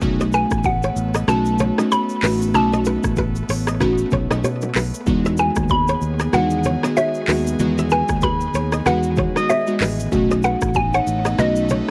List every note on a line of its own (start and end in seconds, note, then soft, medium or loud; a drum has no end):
0.00 0.44 B1 loud
0.00 0.60 A3 loud
0.00 5.03 A3 medium
0.00 10.08 B3 medium
0.00 0.60 C#4 medium
0.00 0.61 D#4 medium
0.00 0.61 F#4 loud
0.00 kick loud
0.00 low conga medium
0.00 shaker medium
0.20 0.28 D#5 medium
0.20 high bongo medium
0.20 shaker medium
0.32 0.44 B4 medium
0.32 0.66 G#5 medium
0.32 shaker medium
0.51 0.89 A1 medium
0.51 kick loud
0.51 cross-stick loud
0.51 shaker loud
0.64 1.30 F#5 medium
0.64 kick medium
0.64 high bongo medium
0.64 shaker medium
0.83 0.91 C#5 medium
0.83 shaker soft
0.96 1.23 A1 medium
0.96 shaker medium
1.15 1.23 D#5 medium
1.15 cross-stick loud
1.15 shaker loud
1.28 1.70 B1 loud
1.28 1.73 A3 medium
1.28 1.73 C#4 medium
1.28 1.73 D#4 medium
1.28 1.74 F#4 loud
1.28 1.39 B4 medium
1.28 1.93 A5 loud
1.28 cross-stick loud
1.28 low conga medium
1.28 shaker medium
1.45 shaker medium
1.59 1.70 C#5 medium
1.59 low conga medium
1.59 shaker medium
1.78 2.19 A3 medium
1.78 2.19 C#4 medium
1.78 2.20 D#4 medium
1.78 2.20 F#4 medium
1.78 1.86 D#5 medium
1.78 cross-stick loud
1.78 low bongo medium
1.78 shaker medium
1.92 2.02 C#5 medium
1.92 2.56 B5 loud
1.92 high bongo medium
1.92 shaker medium
2.09 shaker soft
2.23 2.54 A1 medium
2.23 2.52 A3 medium
2.23 2.52 C#4 medium
2.23 2.52 D#4 medium
2.23 2.52 F#4 medium
2.23 2.34 B4 medium
2.23 clap loud
2.23 open hi-hat medium
2.23 high bongo medium
2.23 low bongo medium
2.23 shaker medium
2.42 shaker loud
2.54 2.96 B1 loud
2.54 3.13 A3 loud
2.54 3.13 C#4 medium
2.54 3.13 D#4 medium
2.54 3.13 F#4 loud
2.54 3.77 A5 loud
2.54 cross-stick loud
2.54 low conga medium
2.54 shaker medium
2.72 2.81 D#5 medium
2.72 high bongo medium
2.72 shaker medium
2.85 2.97 B4 medium
2.85 low bongo medium
2.85 shaker medium
3.04 3.42 A1 medium
3.04 kick medium
3.04 cross-stick loud
3.04 shaker loud
3.16 3.29 B4 medium
3.16 kick medium
3.16 high bongo medium
3.16 shaker medium
3.35 shaker soft
3.49 4.02 A1 loud
3.49 3.60 C#5 medium
3.49 open hi-hat medium
3.49 shaker medium
3.67 3.75 D#5 medium
3.67 cross-stick loud
3.67 shaker loud
3.80 4.26 A3 loud
3.80 4.26 C#4 medium
3.80 4.26 D#4 medium
3.80 4.26 F#4 loud
3.80 3.92 B4 medium
3.80 kick medium
3.80 cross-stick loud
3.80 low conga medium
3.80 shaker medium
3.98 shaker medium
4.11 4.28 B1 loud
4.11 4.23 C#5 medium
4.11 kick medium
4.11 low conga medium
4.11 shaker medium
4.30 4.42 B1 medium
4.30 4.44 A3 medium
4.30 4.44 C#4 medium
4.30 4.44 D#4 medium
4.30 4.44 F#4 medium
4.30 4.39 D#5 medium
4.30 cross-stick loud
4.30 low bongo medium
4.30 shaker medium
4.44 4.70 B2 loud
4.44 4.55 C#5 medium
4.44 high bongo medium
4.44 shaker medium
4.62 low bongo medium
4.62 shaker soft
4.75 4.91 B1 medium
4.75 4.86 B4 medium
4.75 clap loud
4.75 open hi-hat medium
4.75 high bongo medium
4.75 low bongo medium
4.75 shaker medium
4.94 shaker loud
5.07 5.49 E2 loud
5.07 10.08 D#3 medium
5.07 5.66 G#3 loud
5.07 5.66 B3 medium
5.07 5.66 D#4 medium
5.07 5.66 F#4 loud
5.07 10.08 G#4 medium
5.07 kick loud
5.07 low conga medium
5.07 shaker medium
5.25 5.33 E5 medium
5.25 high bongo medium
5.25 shaker medium
5.37 5.50 B4 medium
5.37 5.68 G#5 loud
5.37 shaker medium
5.56 5.94 D#2 medium
5.56 kick loud
5.56 cross-stick loud
5.56 shaker medium
5.69 6.35 B5 loud
5.69 kick medium
5.69 high bongo medium
5.69 shaker medium
5.88 5.97 C#5 medium
5.88 shaker medium
6.02 6.28 D#2 loud
6.02 shaker medium
6.20 6.28 D#5 medium
6.20 cross-stick loud
6.20 shaker loud
6.33 6.75 E2 loud
6.33 6.79 G#3 loud
6.33 6.79 B3 medium
6.33 6.79 D#4 medium
6.33 6.79 F#4 loud
6.33 6.44 B4 medium
6.33 6.99 F#5 loud
6.33 cross-stick loud
6.33 low conga medium
6.33 shaker medium
6.50 shaker medium
6.64 6.76 C#5 medium
6.64 low conga medium
6.64 shaker medium
6.83 7.25 G#3 medium
6.83 7.25 B3 medium
6.83 7.25 D#4 medium
6.83 7.25 F#4 medium
6.83 6.91 D#5 medium
6.83 cross-stick loud
6.83 low bongo medium
6.83 shaker medium
6.97 7.07 C#5 medium
6.97 7.56 E5 medium
6.97 high bongo medium
6.97 shaker medium
7.14 shaker soft
7.28 7.55 D#2 loud
7.28 7.57 G#3 medium
7.28 7.57 B3 medium
7.28 7.57 D#4 medium
7.28 7.58 F#4 medium
7.28 7.39 B4 medium
7.28 clap loud
7.28 open hi-hat medium
7.28 high bongo medium
7.28 low bongo medium
7.28 shaker medium
7.47 shaker loud
7.59 8.02 E2 loud
7.59 8.18 G#3 loud
7.59 8.18 B3 medium
7.59 8.18 D#4 medium
7.59 8.19 F#4 loud
7.59 low conga medium
7.59 shaker medium
7.78 7.86 E5 medium
7.78 high bongo medium
7.78 shaker medium
7.90 8.02 B4 medium
7.90 8.24 G#5 loud
7.90 shaker medium
8.09 8.47 D#2 medium
8.09 kick loud
8.09 cross-stick loud
8.09 shaker loud
8.21 8.34 B4 medium
8.21 8.88 B5 loud
8.21 kick medium
8.21 high bongo medium
8.21 shaker medium
8.41 shaker soft
8.54 8.81 D#2 loud
8.54 8.65 C#5 medium
8.54 shaker medium
8.72 8.81 D#5 medium
8.72 cross-stick loud
8.72 shaker loud
8.86 9.28 E2 loud
8.86 9.31 G#3 loud
8.86 9.31 B3 medium
8.86 9.31 D#4 medium
8.86 9.31 F#4 loud
8.86 8.97 B4 loud
8.86 9.51 F#5 loud
8.86 cross-stick loud
8.86 low conga medium
8.86 shaker medium
9.03 shaker medium
9.16 9.36 C#5 medium
9.16 kick medium
9.16 low conga medium
9.16 shaker medium
9.35 9.49 G#3 medium
9.35 9.49 B3 medium
9.35 9.49 D#4 medium
9.35 9.49 F#4 medium
9.35 10.31 D#5 medium
9.35 cross-stick loud
9.35 low bongo medium
9.35 shaker medium
9.49 9.60 C#5 medium
9.49 10.08 E5 medium
9.49 high bongo medium
9.49 shaker medium
9.67 9.81 G#3 medium
9.67 9.81 B3 medium
9.67 9.81 D#4 medium
9.67 9.81 F#4 medium
9.67 shaker soft
9.80 10.07 A1 medium
9.80 9.92 B4 medium
9.80 clap loud
9.80 open hi-hat medium
9.80 high bongo medium
9.80 low bongo medium
9.80 shaker medium
10.00 shaker loud
10.12 10.54 B1 loud
10.12 10.71 A3 loud
10.12 11.90 A3 medium
10.12 11.90 B3 medium
10.12 10.71 C#4 medium
10.12 11.90 D#4 medium
10.12 10.71 D#4 medium
10.12 10.71 F#4 loud
10.12 kick loud
10.12 low conga medium
10.12 shaker medium
10.30 10.39 D#5 medium
10.30 high bongo medium
10.30 shaker medium
10.43 10.55 B4 medium
10.43 10.76 F#5 loud
10.43 shaker medium
10.61 11.00 A1 medium
10.61 kick loud
10.61 cross-stick loud
10.61 shaker medium
10.74 10.94 G#5 loud
10.74 kick medium
10.74 high bongo medium
10.74 shaker medium
10.93 11.02 C#5 medium
10.93 11.36 F#5 loud
10.93 shaker medium
11.07 11.34 A1 medium
11.07 shaker medium
11.25 11.33 D#5 medium
11.25 cross-stick loud
11.25 shaker loud
11.38 11.81 B1 loud
11.38 11.84 A3 loud
11.38 11.84 C#4 medium
11.38 11.84 D#4 medium
11.38 11.84 F#4 loud
11.38 11.50 B4 medium
11.38 11.90 D#5 medium
11.38 cross-stick loud
11.38 low conga medium
11.38 shaker medium
11.56 shaker medium
11.69 11.81 C#5 medium
11.69 low conga medium
11.69 shaker medium